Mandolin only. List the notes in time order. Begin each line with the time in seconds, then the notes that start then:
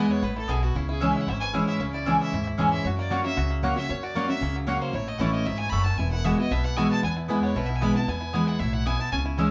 0.48 B3 E4 B4 G#5
1.00 C#4 G#4 E5 G#5
1.53 C#4 G#4 E5 G#5
2.05 C#4 G#4 E5 G#5
2.58 C#4 G#4 E5 G#5
3.10 A#3 F#4 C#5 F#5
3.63 A#3 F#4 C#5 F#5
4.15 A#3 F#4 C#5 F#5
4.67 A#3 F#4 C#5 F#5
5.19 A3 E4 C#5 A5
5.72 A3 E4 C#5 A5
6.24 B3 F#4 E5 G#5
6.77 B3 F#4 E5 G#5
7.28 B3 E4 B4 G#5
7.81 B3 E4 B4 G#5
8.33 B3 E4 B4 G#5
8.85 B3 E4 B4 G#5
9.37 C#4 G#4 E5 G#5